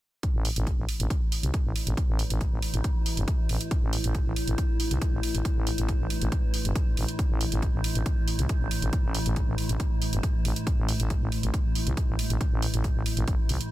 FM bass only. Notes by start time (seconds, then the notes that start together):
0.34 A1
0.56 A1
0.78 A1
1.00 A1
1.43 C2
1.65 A1
1.87 A1
2.08 A1
2.30 A1
2.52 A1
2.73 A1
3.17 G1
3.49 A1
3.82 A1
4.04 A1
4.26 A1
4.48 A1
4.91 C2
5.13 A1
5.35 A1
5.56 A1
5.78 A1
6.00 A1
6.21 A1
6.65 G1
6.97 A1
7.30 A1
7.52 A1
7.74 A1
7.95 A1
8.39 C2
8.61 A1
8.82 A1
9.04 A1
9.26 A1
9.47 A1
9.69 A1
10.13 G1
10.45 A1
10.78 A1
11.00 A1
11.21 A1
11.43 A1
11.87 C2
12.08 A1
12.30 A1
12.52 A1
12.73 A1
12.95 A1
13.17 A1
13.28 A1
13.49 C2